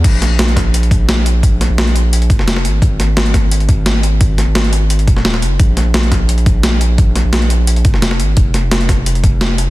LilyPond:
<<
  \new Staff \with { instrumentName = "Sub bass" } { \clef bass \time 4/4 \key aes \mixolydian \tempo 4 = 173 bes,,1~ | bes,,8. bes,,4.~ bes,,16 f,,4 aes,,8 | aes,,1~ | aes,,8. aes,,4.~ aes,,16 ees,,4 ges,,8 |
bes,,1~ | bes,,8. bes,,4.~ bes,,16 f,,4 aes,,8 | f,,1 | }
  \new DrumStaff \with { instrumentName = "Drums" } \drummode { \time 4/4 <cymc hh bd>8 <hh sn>8 <hh sn>16 hh16 <hh bd sn>8 hh16 hh16 <hh bd>8 <hh sn>8 hh8 | <hh bd>8 <hh sn>8 <hh sn>16 hh16 hh8 hh16 hh16 <hh bd>16 sn16 <hh sn>16 sn16 hh8 | <hh bd>8 <hh sn>8 <hh sn>16 hh16 <hh bd sn>8 hh16 hh16 <hh bd>8 <hh sn>8 hh8 | <hh bd>8 <hh sn>8 <hh sn>16 hh16 hh8 hh16 hh16 <hh bd>16 sn16 <hh sn>16 sn16 hh8 |
<hh bd>8 <hh sn>8 <hh sn>16 hh16 <hh bd sn>8 hh16 hh16 <hh bd>8 <hh sn>8 hh8 | <hh bd>8 <hh sn>8 <hh sn>16 hh16 hh8 hh16 hh16 <hh bd>16 sn16 <hh sn>16 sn16 hh8 | <hh bd>8 <hh sn>8 <hh sn>16 hh16 <hh bd sn>8 hh16 hh16 <hh bd>8 <hh sn>8 hh8 | }
>>